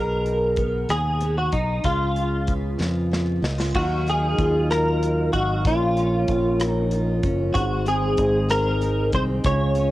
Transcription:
Already playing: B1 B2 G#4 A#4
0.26 D#4, closed hi-hat
0.56 B3, kick, closed hi-hat
0.89 D#2 D#4 G#4, cross-stick, closed hi-hat
1.21 B3, closed hi-hat
1.38 F#4
1.52 B1 D#4, kick, closed hi-hat
1.84 C#2 C#3 F4 G#4, kick, closed hi-hat
2.16 F4, closed hi-hat
2.47 B3, kick, closed hi-hat
2.79 F2 F4, snare
3.11 B3, snare
3.42 C#2 D#4, snare
3.58 F4, snare
3.74 D#2 D#3 F#3 D#4 F#4 F5, kick, crash
4.07 D#4 G#4, closed hi-hat
4.38 D#2 F4, kick, closed hi-hat
4.70 A#4, cross-stick, closed hi-hat
5.03 closed hi-hat
5.33 G#1 D#4 F#4, kick, closed hi-hat
5.65 A#1 A#2 F3 A#3 C#4 F4, kick, closed hi-hat
5.97 C#4, closed hi-hat
6.28 A#1 F4, kick, closed hi-hat
6.60 A#4, cross-stick, closed hi-hat
6.69 D#4
6.91 F4, closed hi-hat
7.23 F#1 C#4, kick, closed hi-hat
7.54 G#1 G#2 D#3 G#3 C4 F#4, kick, closed hi-hat
7.86 C4 G#4, closed hi-hat
8.17 G#1 D#4, kick, closed hi-hat
8.48 G#4 A#4, cross-stick, closed hi-hat
8.81 D#4, closed hi-hat
9.12 C2 C4 C5, kick, closed hi-hat
9.44 C#2 C#3 F4 C#5, kick, closed hi-hat
9.75 C#4, closed hi-hat

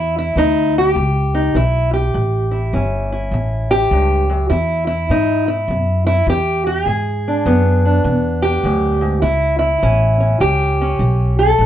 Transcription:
Already playing: E2 A2 C#4 E4
0.18 E4
0.36 D2 E3 D#4
0.78 G4
0.96 C#2 E2
1.35 D#4
1.54 B1 E3 E4
1.93 G4
2.14 A1 A2
2.51 E4
2.73 G1 E3 C#4
3.12 E4
3.31 A1 E2
3.71 G4
3.91 C#2 G2
4.30 F#2
4.50 E2 E4
4.87 E4
5.10 G#2 E3 D#4
5.48 E4
5.68 F#2 B2
6.07 E4
6.27 E2 E3 G4
6.67 G4
6.86 E2 G#2 G#4
7.28 D4
7.46 F#2 E3 B3
7.85 D4
8.04 E2 B2
8.42 G4
8.64 D2 F#2
9.01 G#2
9.22 C#2 A2 E4
9.59 E4
9.83 A1 E3 C#4
10.20 C#4
10.40 C#2 E2 G4
10.81 C#4
10.99 B1 E3
11.39 A4
11.58 A1 A2

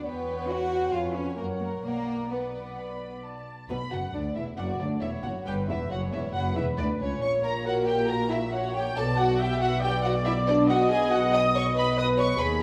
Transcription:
0.06 E2 B3 B4 C#5 G5
0.49 F#4 F#5
0.92 F2 F4 B4 C#5 F5 G#5
1.14 C#4 C#5
1.37 F#2 A#3 A#4 C#5 F#5
1.59 A#3 A#4
1.83 B1 A#3 A#4 D5 F#5
2.30 B3 B4 D5 F#5
2.77 B5
3.24 A5
3.69 B1 B2 B4 B5
3.91 F#1 F#2 F#4 F#5
4.14 D2 D4 D5
4.35 E1 E2 E4 E5
4.57 F#1 F#2 F#4 D5 F#5
4.80 D2 D4 D5
5.01 E1 E2 E4 C#5 E5
5.23 F#1 F#2 F#4 F#5
5.45 G1 G2 G4 B4 G5
5.68 E1 E2 E4 E5
5.89 F#1 F#2 F#4 C#5 F#5
6.12 E1 E2 E4 E5
6.34 F#1 F#2 F#4 B4 F#5
6.56 E1 E2 E4 E5
6.77 D2 D4 D5
6.99 C#2 C#4 C#5
7.21 A#1 A#2 C#5 C#6
7.43 A#4 A#5
7.65 F#4 A#4 F#5
7.87 G4 G5
8.08 F#4 A#4 A#5
8.29 E4 E5
8.52 F#4 C#5 F#5
8.74 G4 G5
8.96 B1 B2 A4 D5 A5
9.18 F#4 F#5
9.40 G4 E5 G5
9.61 F#4 F#5
9.82 G4 D5 G5
10.03 F#4 F#5
10.25 E4 E5
10.48 D4 D5
10.68 F#4 D#5 F#5
10.90 G#4 G#5
11.10 F#4 F#5
11.33 D#5 D#6
11.55 C#5 C#6
11.75 B4 B5
11.97 B4 D#5 D#6
12.18 C#5 C#6
12.38 D#2 G#4 B4 B5

